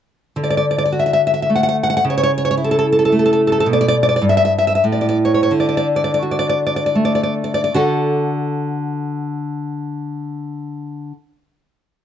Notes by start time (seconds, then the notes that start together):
0.36 D3
0.44 D5
0.50 D5
0.57 D5
0.71 D5
0.78 D5
0.85 D5
0.92 F#4
0.99 E5
1.06 E5
1.13 E5
1.27 E5
1.34 E5
1.42 E5
1.50 A3
1.55 F#5
1.63 F#5
1.69 F#5
1.83 F#5
1.90 F#5
1.97 F#5
2.04 C#3
2.10 C#5
2.18 C#5
2.23 C#5
2.38 C#5
2.45 C#5
2.51 C#5
2.57 E4
2.64 A4
2.71 A4
2.79 A4
2.92 A4
2.99 A4
3.05 A4
3.12 A3
3.19 A4
3.26 A4
3.33 A4
3.47 A4
3.52 A4
3.60 A4
3.66 B2
3.73 D5
3.81 D5
3.88 D5
4.03 D5
4.09 D5
4.16 D5
4.22 G2
4.29 E5
4.37 E5
4.45 E5
4.58 E5
4.67 E5
4.75 E5
4.84 A2
4.92 D5
5.01 D5
5.09 D5
5.25 C#5
5.34 C#5
5.43 C#5
5.51 D3
5.60 D5
5.69 D5
5.77 D5
5.96 D5
6.04 D5
6.14 D5
6.22 F#4
6.31 D5
6.39 D5
6.49 D5
6.67 D5
6.76 D5
6.86 D5
6.95 A3
7.05 D5
7.15 D5
7.23 D5
7.44 D5
7.54 D5
7.64 D5
7.74 D3 F#4 A4 D5 F#5